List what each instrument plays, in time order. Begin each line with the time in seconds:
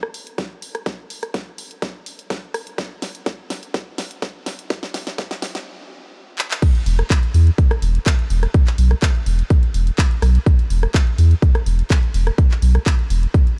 0.03 cross-stick
0.14 open hi-hat
0.27 closed hi-hat
0.38 kick, snare, closed hi-hat
0.62 open hi-hat
0.75 cross-stick, closed hi-hat
0.86 kick, snare, closed hi-hat
1.10 open hi-hat
1.23 cross-stick, closed hi-hat
1.34 kick, snare, closed hi-hat
1.58 open hi-hat
1.71 closed hi-hat
1.82 kick, snare, closed hi-hat
2.06 open hi-hat
2.19 closed hi-hat
2.30 kick, snare, closed hi-hat
2.54 cross-stick, open hi-hat
2.67 closed hi-hat
2.78 kick, snare, closed hi-hat
3.02 snare, open hi-hat
3.15 closed hi-hat
3.26 kick, snare, closed hi-hat
3.50 snare, open hi-hat
3.63 closed hi-hat
3.74 kick, snare, closed hi-hat
3.98 snare, open hi-hat
4.11 closed hi-hat
4.22 kick, snare, closed hi-hat
4.46 snare, open hi-hat
4.59 closed hi-hat
4.70 kick, snare, closed hi-hat
4.83 snare
4.94 snare, open hi-hat
5.07 snare, closed hi-hat
5.18 kick, snare, closed hi-hat
5.31 snare, closed hi-hat
5.42 snare, open hi-hat
5.55 snare, closed hi-hat
6.38 clap
6.51 clap
6.62 kick, closed hi-hat, crash
6.75 closed hi-hat
6.86 sub bass E1, open hi-hat
6.99 cross-stick, closed hi-hat
7.10 kick, clap, closed hi-hat
7.23 closed hi-hat
7.34 sub bass E2, open hi-hat
7.47 closed hi-hat
7.58 kick, closed hi-hat
7.71 cross-stick, closed hi-hat
7.82 sub bass E1, open hi-hat
7.95 closed hi-hat
8.06 kick, clap, closed hi-hat
8.19 closed hi-hat
8.30 sub bass E1, open hi-hat
8.43 cross-stick, closed hi-hat
8.54 kick, closed hi-hat
8.67 clap, closed hi-hat
8.78 sub bass B1, open hi-hat
8.91 cross-stick, closed hi-hat
9.02 kick, clap, closed hi-hat
9.15 closed hi-hat
9.26 sub bass E1, open hi-hat
9.39 closed hi-hat
9.50 kick, closed hi-hat
9.63 closed hi-hat
9.74 sub bass E1, open hi-hat
9.87 closed hi-hat
9.98 kick, clap, open hi-hat
10.11 closed hi-hat
10.22 sub bass B1, cross-stick, open hi-hat
10.35 closed hi-hat
10.46 kick, closed hi-hat
10.59 closed hi-hat
10.70 sub bass E1, open hi-hat
10.83 cross-stick, closed hi-hat
10.94 kick, clap, closed hi-hat
11.07 closed hi-hat
11.18 sub bass E2, open hi-hat
11.31 closed hi-hat
11.42 kick, closed hi-hat
11.55 cross-stick, closed hi-hat
11.66 sub bass E1, open hi-hat
11.79 closed hi-hat
11.90 kick, clap, closed hi-hat
12.03 closed hi-hat
12.14 sub bass E1, open hi-hat
12.27 cross-stick, closed hi-hat
12.38 kick, closed hi-hat
12.51 clap, closed hi-hat
12.62 sub bass B1, open hi-hat
12.75 cross-stick, closed hi-hat
12.86 kick, clap, closed hi-hat
12.99 closed hi-hat
13.10 sub bass E1, open hi-hat
13.23 closed hi-hat
13.34 kick, closed hi-hat
13.47 closed hi-hat